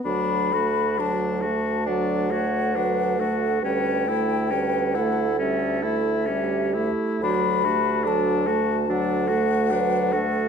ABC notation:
X:1
M:4/4
L:1/8
Q:1/4=68
K:D
V:1 name="Flute"
b2 a2 f4 | g3 f e e2 z | b2 a2 f4 |]
V:2 name="Clarinet"
z4 d c B A | B A B A3 G2 | F G A F A z B A |]
V:3 name="Oboe"
D F D F D F D F | C E C E C E C E | D F D F D F D F |]
V:4 name="French horn" clef=bass
F, A, F, A, F, A, F, A, | G, A, G, A, G, A, G, A, | F, A, F, A, F, A, F, A, |]
V:5 name="Bassoon" clef=bass
D,,8 | D,,6- D,, z | D,,8 |]